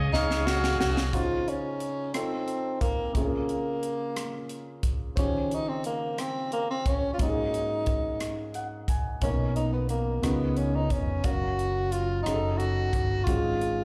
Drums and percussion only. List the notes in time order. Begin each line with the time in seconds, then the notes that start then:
0.14 snare
0.31 snare
0.47 snare
0.64 snare
0.81 snare
0.97 snare
1.13 kick, closed hi-hat
1.48 closed hi-hat
1.80 closed hi-hat
2.14 cross-stick, closed hi-hat
2.48 closed hi-hat
2.81 kick, closed hi-hat
3.15 kick, closed hi-hat
3.49 closed hi-hat
3.83 closed hi-hat
4.16 cross-stick, closed hi-hat
4.49 closed hi-hat
4.83 kick, closed hi-hat
5.17 kick, closed hi-hat
5.51 closed hi-hat
5.84 closed hi-hat
6.18 cross-stick, closed hi-hat
6.52 closed hi-hat
6.86 kick, closed hi-hat
7.19 kick, closed hi-hat
7.54 closed hi-hat
7.86 kick, closed hi-hat
8.20 cross-stick, closed hi-hat
8.54 closed hi-hat
8.88 kick, closed hi-hat
9.22 kick, closed hi-hat
9.56 closed hi-hat
9.89 closed hi-hat
10.23 cross-stick, closed hi-hat
10.57 closed hi-hat
10.90 kick, closed hi-hat
11.24 kick, closed hi-hat
11.59 closed hi-hat
11.92 closed hi-hat
12.26 cross-stick, closed hi-hat
12.60 closed hi-hat
12.93 kick, closed hi-hat
13.27 kick, closed hi-hat
13.61 closed hi-hat